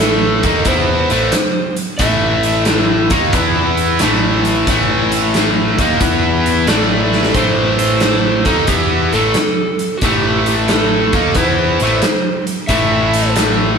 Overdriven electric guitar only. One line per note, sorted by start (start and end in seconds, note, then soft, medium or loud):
0.00 0.44 A2 medium
0.00 0.44 E3 medium
0.00 0.44 A3 loud
0.44 0.66 D#3 medium
0.44 0.66 A#3 loud
0.44 0.67 D#4 medium
0.66 1.10 E3 medium
0.66 1.10 B3 medium
0.66 1.11 E4 medium
1.10 1.33 A2 medium
1.10 1.33 E3 medium
1.10 1.33 A3 loud
2.00 3.10 A2 medium
2.00 3.10 E3 medium
2.00 3.11 A3 medium
3.11 3.33 D#3 loud
3.11 3.34 A#3 loud
3.11 3.34 D#4 loud
3.34 4.00 E3 medium
3.34 4.01 B3 medium
3.34 4.01 E4 loud
4.00 4.67 A2 medium
4.00 4.67 E3 medium
4.00 4.68 A3 medium
4.69 5.79 A2 medium
4.69 5.79 E3 loud
4.69 5.79 A3 loud
5.80 6.01 D#3 medium
5.80 6.01 A#3 medium
5.80 6.02 D#4 loud
6.01 6.67 E3 medium
6.01 6.68 B3 medium
6.01 6.68 E4 medium
6.68 7.35 A2 medium
6.68 7.35 E3 medium
6.68 7.35 A3 loud
7.36 8.46 A2 medium
7.36 8.46 E3 medium
7.36 8.46 A3 loud
8.46 8.68 D#3 medium
8.46 8.69 A#3 medium
8.46 8.69 D#4 loud
8.68 9.12 E3 medium
8.68 9.12 B3 medium
8.68 9.13 E4 medium
9.14 9.35 A2 medium
9.14 9.36 E3 medium
9.14 9.36 A3 loud
10.04 11.13 A2 medium
10.04 11.14 E3 medium
10.04 11.14 A3 loud
11.14 11.36 D#3 medium
11.14 11.36 A#3 loud
11.14 11.36 D#4 loud
11.37 11.80 E3 medium
11.37 11.80 B3 medium
11.37 11.80 E4 medium
11.82 12.03 A2 medium
11.82 12.04 E3 medium
11.82 12.04 A3 medium
12.69 13.78 A2 medium
12.69 13.78 E3 medium
12.69 13.78 A3 medium